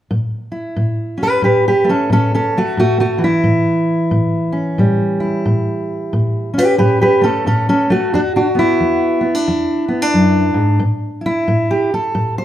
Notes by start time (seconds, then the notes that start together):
0.11 A2
0.52 E4
0.76 A2
1.18 C#4
1.22 G4 B4
1.42 A2 G4 B4
1.68 G4 B4
1.84 A3
1.89 C#4 A4
2.10 A2 C#4 A4
2.35 C#4 A4
2.58 A3 F#4
2.77 A2 A3 F#4
3.00 A3 F#4
3.18 E3
3.24 E4
3.44 A2
4.11 A2
4.52 C#4
4.78 A2 G3
5.20 E4
5.45 A2
6.13 A2
6.54 C#4
6.58 G4 B4
6.78 A2 G4 B4
7.01 G4 B4
7.21 A3 C#4 A4
7.46 A2 C#4 A4
7.69 C#4 A4
7.90 A3 F#4
8.13 E2 D4 F#4
8.36 D4 F#4
8.55 B3 E4
8.80 E2
9.21 B3
9.35 D4
9.48 E2
9.88 B3
10.02 D4
10.14 F#2
10.54 G#2
10.80 A2
11.21 E4
11.26 E4
11.48 A2
11.71 G4
11.94 A4
12.15 A2
12.38 C5